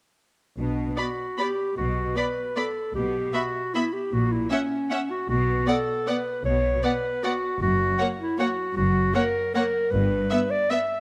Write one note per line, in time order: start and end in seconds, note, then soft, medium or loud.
0.58 0.89 B1 soft
0.58 0.91 B2 soft
0.58 1.00 D4 soft
0.97 1.05 B3 soft
0.97 1.38 F#4 medium
0.97 1.06 D5 soft
0.97 1.06 B5 soft
1.38 1.47 B3 soft
1.38 1.77 G4 medium
1.38 1.47 D5 soft
1.38 1.46 B5 soft
1.77 2.07 B1 soft
1.77 2.09 B2 soft
1.77 2.18 F#4 medium
2.15 2.23 B3 soft
2.15 2.58 B4 medium
2.15 2.24 D5 soft
2.15 2.25 B5 soft
2.56 2.65 B3 soft
2.56 2.94 A4 medium
2.56 2.64 D5 soft
2.56 2.65 B5 soft
2.95 3.26 B1 soft
2.95 3.27 B2 soft
2.95 3.35 G4 medium
3.34 3.42 B3 soft
3.34 3.75 F#4 medium
3.34 3.42 E5 soft
3.34 3.42 B5 soft
3.74 3.83 B3 soft
3.74 3.94 E4 medium
3.74 3.83 E5 soft
3.74 3.83 B5 soft
3.93 4.14 G4 soft
4.12 4.42 A#1 soft
4.12 4.44 A#2 soft
4.12 4.33 F#4 medium
4.32 4.50 E4 soft
4.50 5.12 C#4 medium
4.50 4.59 C#4 soft
4.50 4.58 E5 soft
4.50 4.59 F#5 soft
4.91 4.99 C#4 soft
4.91 4.99 E5 soft
4.91 4.99 F#5 soft
5.11 5.29 F#4 medium
5.29 5.59 B1 soft
5.29 5.61 B2 medium
5.29 5.70 F#4 medium
5.67 5.75 B3 soft
5.67 6.10 A4 medium
5.67 5.75 D5 soft
5.67 5.76 F#5 soft
6.07 6.16 B3 soft
6.07 6.44 B4 medium
6.07 6.16 D5 soft
6.07 6.15 F#5 soft
6.45 6.75 B1 medium
6.45 6.77 B2 soft
6.45 6.85 C#5 medium
6.83 6.91 B3 soft
6.83 7.25 B4 medium
6.83 6.91 D5 soft
6.83 6.92 F#5 soft
7.23 7.32 B3 soft
7.23 7.61 F#4 medium
7.23 7.32 D5 soft
7.23 7.32 F#5 soft
7.60 7.90 F#1 medium
7.60 7.92 F#2 medium
7.60 8.02 F#4 medium
7.98 8.07 A#3 soft
7.98 8.07 C#5 soft
7.98 8.06 F#5 soft
8.19 8.40 E4 medium
8.38 8.46 A#3 soft
8.38 8.76 F#4 medium
8.38 8.47 C#5 soft
8.38 8.48 F#5 soft
8.76 9.06 F#1 medium
8.76 9.08 F#2 medium
8.76 9.16 F#4 medium
9.14 9.22 A#3 soft
9.14 9.54 A#4 medium
9.14 9.23 C#5 soft
9.14 9.23 F#5 soft
9.54 9.62 A#3 medium
9.54 9.93 A#4 medium
9.54 9.63 C#5 soft
9.54 9.63 F#5 soft
9.91 10.22 G1 medium
9.91 10.24 G2 medium
9.91 10.52 B4 medium
10.31 10.39 B3 soft
10.31 10.39 E5 soft
10.50 10.72 D5 medium
10.70 10.79 B3 soft
10.70 11.00 E5 medium
10.70 10.79 E5 soft
10.70 10.80 E5 soft